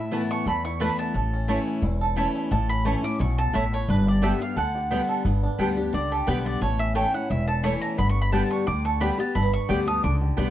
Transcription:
Already playing: upright bass A2, steel-string acoustic guitar A2, five-string banjo A3 E4, mandolin E5
0.11 steel-string acoustic guitar E3 A3 B3 E4, five-string banjo E3, mandolin A3 E4 B4 A5
0.31 five-string banjo A3, mandolin C#6
0.46 upright bass E2, steel-string acoustic guitar E2, five-string banjo A4, mandolin B5
0.65 five-string banjo E4, mandolin C#6
0.80 steel-string acoustic guitar E3 A3 B3 E4, mandolin A3 E4 B4 A5 B5, five-string banjo E4
0.99 five-string banjo A3, mandolin A5
1.14 upright bass A1, steel-string acoustic guitar A2, five-string banjo A3
1.33 five-string banjo C#4
1.48 steel-string acoustic guitar E3 A3 C#4 E4, mandolin A3 E4 C#5 A5, five-string banjo A4
1.67 five-string banjo C#4
1.82 upright bass E1, steel-string acoustic guitar E2, five-string banjo E4
2.01 five-string banjo A4
2.16 steel-string acoustic guitar E3 A3 C#4 E4, mandolin A3 E4 C#5 A5, five-string banjo E4
2.36 five-string banjo A3
2.51 upright bass A1, steel-string acoustic guitar A2, five-string banjo A3, mandolin A5
2.69 five-string banjo C#4, mandolin B5
2.85 steel-string acoustic guitar E3 A3 C#4 E4, mandolin A3 E4 C#5 A5 C#6, five-string banjo A4
3.03 five-string banjo C#4, steel-string acoustic guitar C#4 E4, mandolin D6
3.19 upright bass B1, steel-string acoustic guitar B2, five-string banjo E4, mandolin C#6
3.38 five-string banjo A4, mandolin A5
3.53 upright bass A1, steel-string acoustic guitar A2, mandolin A3 E4 C#5 E5 A5, five-string banjo E4
3.73 five-string banjo A3, mandolin C#5
3.89 upright bass G1, steel-string acoustic guitar G2, five-string banjo D4, mandolin B4
4.07 five-string banjo G4, mandolin D5
4.22 steel-string acoustic guitar D3 G3 B3 G4, mandolin B3 G4 D5 E5 G5, five-string banjo A4
4.40 steel-string acoustic guitar B3 G4, five-string banjo G4, mandolin F5
4.56 upright bass D2, steel-string acoustic guitar D3, five-string banjo A4, mandolin F#5
4.75 five-string banjo G4
4.91 steel-string acoustic guitar D3 G3 B3 G4, mandolin B3 G4 D5 G5, five-string banjo B3
5.09 five-string banjo A4
5.25 upright bass G1, steel-string acoustic guitar G2, five-string banjo B3
5.43 five-string banjo D4
5.58 upright bass D2, steel-string acoustic guitar D3 G3 B3 G4, mandolin B3 G4 D5 G5, five-string banjo A4
5.77 steel-string acoustic guitar B3 G4, five-string banjo D4
5.93 upright bass C#2, steel-string acoustic guitar D3, five-string banjo G4, mandolin D5
6.12 mandolin G4, five-string banjo A4
6.27 upright bass B1, steel-string acoustic guitar D3 G3 B3 G4, mandolin B3 G4 B4 D5 G5, five-string banjo G4
6.46 five-string banjo B3, mandolin D5
6.61 upright bass A1, steel-string acoustic guitar A2, five-string banjo A3, mandolin C#5
6.79 five-string banjo C#4, mandolin E5
6.95 steel-string acoustic guitar E3 A3 C#4 E4, mandolin A3 E4 C#5 G5 A5, five-string banjo A4
7.14 five-string banjo C#4, steel-string acoustic guitar C#4 E4, mandolin F#5
7.30 upright bass E1, steel-string acoustic guitar E2, five-string banjo E4, mandolin E5
7.48 five-string banjo A4, mandolin A5
7.63 steel-string acoustic guitar E3 A3 C#4 E4, mandolin A3 E4 C#5 A5 C#6, five-string banjo E4
7.82 five-string banjo A3, mandolin A#5
7.98 upright bass G1, steel-string acoustic guitar G2, five-string banjo B3, mandolin B5
8.09 mandolin C#6
8.22 mandolin B5
8.32 steel-string acoustic guitar D3 G3 B3 G4, mandolin B3 G4 D5 G5 A5, five-string banjo A4
8.51 five-string banjo D4, mandolin C#6
8.67 upright bass D2, steel-string acoustic guitar D3, five-string banjo G4, mandolin D6
8.85 five-string banjo A4, mandolin C#6
9.00 steel-string acoustic guitar D3 G3 B3 G4, mandolin B3 G4 D5 G5 B5, five-string banjo G4
9.18 five-string banjo B3, steel-string acoustic guitar B3 G4, mandolin A5
9.35 upright bass G1, steel-string acoustic guitar G2, five-string banjo A3, mandolin B5
9.43 five-string banjo B3
9.53 mandolin C#6
9.68 upright bass D2, steel-string acoustic guitar D3 G3 B3 G4, mandolin B3 G4 D5 G5 D6, five-string banjo G4
9.87 steel-string acoustic guitar B3 G4, five-string banjo A4, mandolin D#6
10.03 upright bass C#2, steel-string acoustic guitar D3, five-string banjo D4, mandolin D6
10.21 five-string banjo G4
10.37 upright bass B1, steel-string acoustic guitar D3 G3 B3 G4, mandolin B3 G4 D5 G5, five-string banjo B3

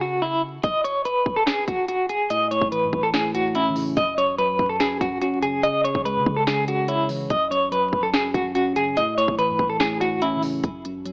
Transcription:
Already playing: 808-style bass C#3
0.01 clean electric guitar F#4
0.22 clean electric guitar E4
0.63 808-style bass F#1, clean electric guitar D#5, kick, closed hi-hat
0.84 clean electric guitar C#5, closed hi-hat
1.05 clean electric guitar B4, closed hi-hat
1.26 808-style bass F#1, kick
1.36 clean electric guitar A4
1.47 clean electric guitar G#4, snare, closed hi-hat
1.68 808-style bass F#1, clean electric guitar F#4, kick, closed hi-hat
1.88 clean electric guitar F#4, closed hi-hat
2.09 clean electric guitar G#4, closed hi-hat
2.30 tine electric piano A2, clean electric guitar D#5, closed hi-hat
2.51 tine electric piano A2, clean electric guitar C#5, closed hi-hat
2.61 808-style bass A1, kick
2.71 tine electric piano E3, clean electric guitar B4, closed hi-hat
2.82 808-style bass A2
2.93 808-style bass A1, kick
3.03 clean electric guitar A4
3.13 tine electric piano A2, clean electric guitar G#4, snare, closed hi-hat
3.35 tine electric piano A2, clean electric guitar F#4, closed hi-hat
3.55 tine electric piano C#4, clean electric guitar E4, closed hi-hat
3.66 808-style bass E3
3.76 tine electric piano C#3, open hi-hat
3.97 808-style bass F#1, tine electric piano F#2, clean electric guitar D#5, kick, closed hi-hat
4.18 tine electric piano F#2, clean electric guitar C#5, closed hi-hat
4.28 808-style bass A1
4.39 tine electric piano F#3, clean electric guitar B4, closed hi-hat
4.59 808-style bass F#2, kick
4.69 clean electric guitar A4
4.80 tine electric piano F#2, clean electric guitar G#4, snare, closed hi-hat
5.01 808-style bass F#1, tine electric piano F#2, clean electric guitar F#4, kick, closed hi-hat
5.22 tine electric piano C#4, clean electric guitar F#4, closed hi-hat
5.42 tine electric piano C#3, clean electric guitar G#4, closed hi-hat
5.63 tine electric piano C#3, clean electric guitar D#5, closed hi-hat
5.84 tine electric piano C#3, clean electric guitar C#5, closed hi-hat
5.95 808-style bass C#2, kick
6.05 tine electric piano G#3, clean electric guitar B4, closed hi-hat
6.16 808-style bass C#3
6.26 808-style bass C#3, kick
6.36 clean electric guitar A4
6.47 tine electric piano C#3, clean electric guitar G#4, snare, closed hi-hat
6.67 tine electric piano C#3, clean electric guitar F#4, closed hi-hat
6.88 clean electric guitar E4, tine electric piano C#5, closed hi-hat
7.09 tine electric piano E3, open hi-hat
7.30 808-style bass F#1, tine electric piano F#2, clean electric guitar D#5, kick, closed hi-hat
7.51 tine electric piano F#2, clean electric guitar C#5, closed hi-hat
7.71 tine electric piano F#3, clean electric guitar B4, closed hi-hat
7.93 808-style bass F#1, kick
8.03 clean electric guitar A4
8.13 tine electric piano F#2, clean electric guitar G#4, snare, closed hi-hat
8.34 808-style bass F#1, tine electric piano F#2, clean electric guitar F#4, kick, closed hi-hat
8.55 tine electric piano C#4, clean electric guitar F#4, closed hi-hat
8.76 tine electric piano C#3, clean electric guitar G#4, closed hi-hat
8.97 tine electric piano A2, clean electric guitar D#5, closed hi-hat
9.18 tine electric piano A2, clean electric guitar C#5, closed hi-hat
9.28 808-style bass A1, kick
9.38 tine electric piano E3, clean electric guitar B4, closed hi-hat
9.49 808-style bass A2
9.59 808-style bass A1, kick
9.70 clean electric guitar A4
9.80 tine electric piano A2, clean electric guitar G#4, snare, closed hi-hat
10.01 tine electric piano A2, clean electric guitar F#4, closed hi-hat
10.22 tine electric piano C#4, clean electric guitar E4, closed hi-hat
10.32 808-style bass E3
10.43 tine electric piano C#3, open hi-hat
10.63 808-style bass F#1, tine electric piano F#2, kick, closed hi-hat
10.84 tine electric piano F#2, closed hi-hat
10.95 808-style bass A1
11.05 tine electric piano F#3, closed hi-hat

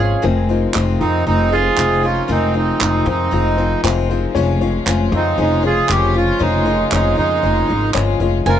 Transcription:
Already playing: upright piano F1 F2 A#4 C5, upright bass G#1, string section C#3 F3 A#3 F4, steel-string acoustic guitar F4, mandolin G#4 C#5 F5
0.00 upright piano F3 C#4 G#4 C#5, steel-string acoustic guitar G#3 C#4
0.22 upright bass F1, upright piano F1 F2 F3 C4 D#4 G#4 C5, steel-string acoustic guitar F2 C3 D#3 G#3 C4 F4, string section C3 F3 G#3 D#4
0.49 steel-string acoustic guitar D#3 G#3 C4 F4, upright piano F3 C4 D#4 G#4 A#4
0.74 upright bass F1, steel-string acoustic guitar F2 C3 D#3 G#3 C4 F4, upright piano F3 C4 D#4 G#4 C5, clap
1.00 upright bass F2, steel-string acoustic guitar D#3 G#3 C4 F4, upright piano F3 C4 D#4 G#4 D#5, trumpet C4, accordion D#4
1.26 upright bass F1, steel-string acoustic guitar D#3 G#3 C4 F4, upright piano F3 C4 D#4 G#4 A#4, trumpet C4, accordion D#4
1.52 steel-string acoustic guitar D#3 G#3 C4 F4, upright piano F3 C4 D#4 G#4 C5, trumpet F4, accordion G#4
1.77 upright bass F1, steel-string acoustic guitar F2 C3 D#3 G#3 C4 F4, upright piano F3 C4 D#4 C5, clap
2.03 steel-string acoustic guitar D#3 G#3 C4 F4, upright piano F3 C4 D#4 G#4 C5, trumpet C#4, accordion F4
2.28 upright piano F1 F2 F3 C4 D#4 G#4 A#4, upright bass F1, steel-string acoustic guitar F2 C3 D#3 G#3 C4 F4, trumpet C4, accordion D#4
2.54 steel-string acoustic guitar D#3 G#3 C4 F4, upright piano F3 C4 D#4 G#4 D#5, trumpet C4, accordion D#4
2.80 upright bass F1, steel-string acoustic guitar F2 C3 D#3 G#3 C4 F4, upright piano F3 C4 D#4 G#4 C5, trumpet C4, accordion D#4, clap
3.05 upright bass F2, steel-string acoustic guitar D#3 G#3 C4 F4, upright piano F3 C4 D#4 G#4 C5, trumpet C4
3.09 accordion D#4
3.31 upright bass F1, steel-string acoustic guitar D#3 G#3 C4 F4, upright piano F3 C4 D#4 G#4 D#5
3.57 steel-string acoustic guitar D#3 G#3 C4 F4, upright piano F3 C4 D#4 G#4 C5
3.83 upright bass F1, steel-string acoustic guitar F2 C3 D#3 G#3 C4 F4, upright piano F3 C4 D#4 G#4 C5, clap
4.09 steel-string acoustic guitar D#3 G#3 C4 F4, upright piano F3 C4 D#4 G#4 C5
4.34 upright piano F1 F2 F3 G#3 C#4 G#4 C#5, upright bass F1, string section C#3 F4, steel-string acoustic guitar F3 G#3 C#4 F4
4.61 upright piano F3 G#3 C#4 G#4 C#5, steel-string acoustic guitar G#3 C#4 F4
4.86 upright bass F1, upright piano F3 G#3 C#4 G#4 C5, steel-string acoustic guitar F3 G#3 C#4 F4, clap
5.11 upright bass F2, upright piano F3 G#3 C#4 G#4 C#5, steel-string acoustic guitar G#3 C#4 F4, trumpet C4
5.16 accordion D#4
5.38 upright bass F1, upright piano F3 G#3 C#4 G#4 C5, steel-string acoustic guitar F3 G#3 C#4 F4, trumpet G#3, accordion D#4
5.62 upright piano F3 G#3 C#4 G#4 C#5, steel-string acoustic guitar G#3 C#4 F4, trumpet F4, accordion G#4
5.89 upright bass F1, steel-string acoustic guitar F3 G#3 C#4 F4, upright piano F3 G#3 C#4 G#4 A#4, trumpet C#4, accordion G4, clap
6.14 upright piano F3 G#3 C#4 G#4 C5, steel-string acoustic guitar G#3 C#4 F4, trumpet C#4, accordion F4
6.39 upright piano F1 F2 F3 G#3 C#4 G#4 C#5, upright bass F1, steel-string acoustic guitar F3 G#3 C#4 F4, trumpet G#3, string section A#3, accordion D#4
6.65 upright piano F3 G#3 C#4 G#4 A#4, steel-string acoustic guitar G#3 C#4 F4
6.91 upright bass F1, upright piano F3 G#3 C#4 G#4 C#5, steel-string acoustic guitar F3 G#3 C#4 F4, trumpet G#3, accordion D#4, clap
7.17 upright bass F2, upright piano F3 G#3 C#4 G#4 C#5, trumpet G#3, steel-string acoustic guitar G#3 C#4 F4, accordion D#4
7.42 upright bass F1, steel-string acoustic guitar F3 G#3 C#4 F4, upright piano F3 G#3 C#4 G#4 C#5
7.68 upright bass G#1, upright piano F3 G#3 C#4 G#4 D#5, steel-string acoustic guitar G#3 C#4 F4
7.94 upright bass G1, steel-string acoustic guitar F3 G#3 C#4 F4, upright piano F3 G#3 C#4 G#4 C#5, clap
8.20 upright bass F1, upright piano F3 G#3 C#4 G#4 C#5, steel-string acoustic guitar G#3 C#4 F4
8.46 upright bass F1, upright piano F1 F2 F3 C4 D#4 G#4 C5, steel-string acoustic guitar F2 C3 D#3 G#3 C4 F4, string section C3 F3 G#3 D#4, trumpet F4, accordion A#4, mandolin G#5

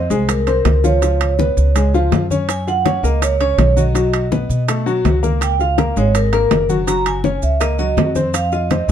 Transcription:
0.10 upright bass C2, upright piano G#3 G#4, vibraphone C5, high bongo, high conga, maracas
0.29 vibraphone A#4, high bongo, high conga, high timbale, maracas
0.47 upright piano C4 C5, vibraphone A#4, high conga, high timbale, maracas
0.65 upright bass C#2, high bongo, low bongo, high conga, high timbale, low timbale, maracas
0.84 upright piano F3 F4, vibraphone C#5, high bongo, high conga, maracas
1.02 upright piano F3 F4, high bongo, high conga, high timbale, maracas
1.21 high bongo, high conga, high timbale, maracas
1.39 upright piano B3 B4, high bongo, high conga, low timbale, maracas
1.57 upright bass C#2, high bongo, high conga, maracas
1.76 upright piano G#3 G#4, high bongo, high conga, high timbale, maracas
1.94 upright piano F3 F4, high conga, maracas
2.12 upright bass F#2, high bongo, low bongo, high conga, high timbale, low timbale, maracas
2.30 upright piano C#4 C#5, high bongo, high conga, maracas
2.49 vibraphone G#5, high bongo, high conga, high timbale, maracas
2.67 upright piano F4 F5, vibraphone F#5, high bongo, high conga, maracas
2.85 upright piano C#4 C#5, high bongo, high conga, high timbale, low timbale, maracas
3.03 upright bass C#2, upright piano A#3 A#4, vibraphone D#5, high bongo, high conga, maracas
3.22 vibraphone C#5, high bongo, high conga, high timbale, maracas
3.40 upright piano C#4 C#5, vibraphone C#5, high conga, high timbale, maracas
3.58 upright bass B1, high bongo, low bongo, high conga, high timbale, low timbale, maracas
3.76 upright piano F#3 F#4, vibraphone D#5, high bongo, high conga, maracas
3.94 upright piano F#3 F#4, high bongo, high conga, high timbale, maracas
4.14 high bongo, high conga, high timbale, maracas
4.31 upright piano B3 B4, high bongo, high conga, low timbale, maracas
4.49 upright bass B2, high bongo, high conga, maracas
4.68 upright piano A3 A4, high bongo, high conga, high timbale, maracas
4.86 upright piano F#3 F#4, high conga, maracas
5.05 upright bass C#2, high bongo, low bongo, high conga, high timbale, low timbale, maracas
5.23 upright piano A#3 A#4, high bongo, high conga, maracas
5.41 vibraphone G5, high bongo, high conga, high timbale, maracas
5.59 upright piano F4 F5, vibraphone F5, high bongo, high conga, maracas
5.78 upright piano A#3 A#4, high bongo, high conga, high timbale, low timbale, maracas
5.96 upright bass G#1, upright piano G#3 G#4, vibraphone C#5, high bongo, high conga, maracas
6.15 vibraphone A#4, high bongo, high conga, high timbale, maracas
6.33 upright piano A#3 A#4, vibraphone A#4, high conga, high timbale, maracas
6.51 upright bass F#1, high bongo, low bongo, high conga, high timbale, low timbale, maracas
6.69 upright piano F#3 F#4, high bongo, high conga, maracas
6.87 upright piano F#3 F#4, vibraphone A#5, high bongo, high conga, high timbale, maracas
7.06 vibraphone G#5, high bongo, high conga, high timbale, maracas
7.24 upright piano C#4 C#5, high bongo, high conga, low timbale, maracas
7.42 upright bass C#2, vibraphone E5, high bongo, high conga, maracas
7.60 upright piano A#3 A#4, vibraphone D#5, high bongo, high conga, high timbale, maracas
7.79 upright piano F#3 F#4, vibraphone D#5, high conga, maracas
7.97 upright bass F2, high bongo, low bongo, high conga, high timbale, low timbale, maracas
8.15 upright piano C4 C5, high bongo, high conga, maracas
8.34 vibraphone F5, high bongo, high conga, high timbale, maracas
8.52 upright piano F4 F5, vibraphone D#5, high bongo, high conga, maracas
8.71 upright piano C4 C5, high bongo, high conga, high timbale, low timbale, maracas
8.88 upright bass F2

